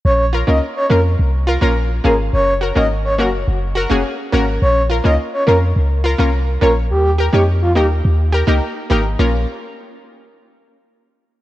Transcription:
<<
  \new Staff \with { instrumentName = "Soft synth lead" } { \time 4/4 \key bes \minor \tempo 4 = 105 des''8 r16 ees''16 r16 des''16 bes'16 r4. r16 bes'16 r16 | des''8 r16 ees''16 r16 des''16 ges'16 r2 r16 | des''8 r16 ees''16 r16 des''16 bes'16 r4. r16 bes'16 r16 | g'8 r16 g'16 r16 f'16 g'16 r2 r16 |
r1 | }
  \new Staff \with { instrumentName = "Synth pluck" } { \time 4/4 \key bes \minor r8 <f' bes'>16 <bes des' f' bes'>16 r8 <bes des' f' bes'>16 r8. <f' bes'>16 <bes des' f' bes'>16 r8 <bes des' f' aes'>16 r16 | r8 <ges' bes'>16 <bes des' ges' bes'>16 r8 <bes des' ges' bes'>16 r8. <ges' bes'>16 <bes des' ges' aes'>16 r8 <bes des' ges' bes'>16 r16 | r8 <f' bes'>16 <bes des' f' bes'>16 r8 <bes des' f' bes'>16 r8. <f' bes'>16 <bes des' f' bes'>16 r8 <bes des' f' des''>16 r16 | r8 <g' bes'>16 <bes ees' g' des''>16 r8 <bes ees' g' bes'>16 r8. <g' bes'>16 <bes ees' g' bes'>16 r8 <bes ees' g' bes'>16 r16 |
<bes des' f' bes'>8 r2. r8 | }
  \new Staff \with { instrumentName = "808-style bass" } { \clef bass \time 4/4 \key bes \minor bes,,8. des,16 r8 f,8 c,8. bes,,8. aes,,8 | ges,,8. aes,,8. ges,,8 ges,,8. f,,16 r8 aes,,8 | bes,,8. des,16 r8 f,8 des,8. c,8. bes,,8 | ees,8. f,8. ees,8 ees,8. des,16 r8 aes,,8 |
bes,,8 r2. r8 | }
>>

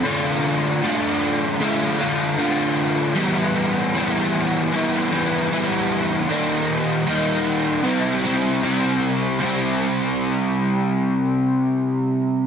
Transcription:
\new Staff \with { instrumentName = "Overdriven electric guitar" } { \time 4/4 \key c \major \tempo 4 = 77 <d a d' f'>4 <d a d' f'>4 <d a d' f'>8 <a d' f'>8 <d a d' f'>4 | <e g b e'>4 <e g b e'>4 <e g b e'>8 <g b e'>8 <e g b e'>4 | <ees g bes ees'>4 <ees g bes ees'>4 <c g c' e'>8 <g c' e'>8 <c g c' e'>4 | <c g c' e'>1 | }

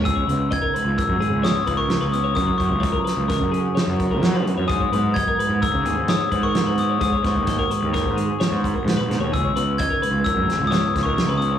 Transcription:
<<
  \new Staff \with { instrumentName = "Glockenspiel" } { \time 5/4 \key gis \minor \tempo 4 = 129 e'''4 gis'''4 e'''4 dis'''8. cis'''8. dis'''8 | dis'''8 cis'''4 r2. r8 | dis'''4 gis'''4 e'''4 dis'''8. cis'''8. dis'''8 | dis'''8 cis'''4 r2. r8 |
e'''4 gis'''4 e'''4 dis'''8. cis'''8. dis'''8 | }
  \new Staff \with { instrumentName = "Clean electric guitar" } { \time 5/4 \key gis \minor gis'16 cis''16 b'8 dis''16 ais'16 b'8 ais'8 gis'8 cis''8 b'16 ais'8 b'8 cis''16 | ais'16 cis''16 ais'8 cis''16 ais'16 b'8 ais'8 gis'8 cis''8 b'16 ais'8 b'8 cis''16 | gis'16 cis''16 b'8 dis''16 ais'16 b'8 ais'8 gis'8 cis''8 b'16 ais'8 b'8 cis''16 | gis'16 cis''16 b'8 dis''16 ais'16 b'8 ais'8 gis'8 cis''8 b'16 ais'8 b'8 cis''16 |
gis'16 cis''16 b'8 dis''16 ais'16 b'8 ais'8 gis'8 cis''8 b'16 ais'8 b'8 cis''16 | }
  \new Staff \with { instrumentName = "Clean electric guitar" } { \time 5/4 \key gis \minor << { b8 b8 dis'2 b8 dis'4 b8 | <cis' e' ais'>8 e'8 ais'2 e'8 ais'4 e'8 | r8 b8 fis'2 b8 dis'16 fis'8. b8~ | b8 b8 fis'2 b8 fis'4. |
r8 b8 dis'2 b8 dis'4 b8 | } \\ { cis4. gis8 gis,8 gis4. cis4 | fis4. cis'8 cis8 cis'4. fis4 | gis,4. gis8 dis8 gis4. gis,4 | gis,4. gis8 dis8 gis4. ais,8 b,8 |
cis4. gis8 gis,8 gis4. cis4 | } >> }
  \new Staff \with { instrumentName = "Fingered electric bass" } { \clef bass \time 5/4 \key gis \minor cis,8 cis,8 r8. cis,16 r16 fis,16 gis,,16 cis,8 r16 cis,8. cis,8. | fis,16 r16 fis,16 cis,8 r8 cis,8 fis,8 r8 fis,8. fis8 fis,16 fis,16 | gis,8 gis,8 r8. gis,16 r16 cis16 dis,16 gis,8 r16 gis,8. gis,8. | gis,16 r16 gis,16 dis,8 r8 dis,8 gis,8 r8 gis,8 r16 gis,16 r16 gis,16 dis,16 |
cis,8 cis,8 r8. cis,16 r16 fis,16 gis,,16 cis,8 r16 cis,8. cis,8. | }
  \new DrumStaff \with { instrumentName = "Drums" } \drummode { \time 5/4 <hh bd>8 hh8 <hh bd>8 hh8 <hh bd>8 hh8 <hh sn>8 <hh bd>8 <hh sn>8 hh8 | <hh bd>8 <hh bd>8 <hh bd>8 <hh sn>8 <hh bd sn>8 hh8 <hh sn>8 <hh bd>8 <hh sn>8 hh8 | <hh bd>8 hh8 <hh bd>8 hh8 <hh bd>8 hh8 <hh sn>8 <hh bd>8 <hh sn>8 hh8 | <hh bd>8 <hh bd sn>8 <hh bd sn>8 hh8 <hh bd sn>8 hh8 <hh sn>8 <hh bd>8 <hh sn>8 <hh sn>8 |
<hh bd>8 hh8 <hh bd>8 hh8 <hh bd>8 <hh sn>8 <hh sn>8 <hh bd sn>8 <hh sn>8 hh8 | }
>>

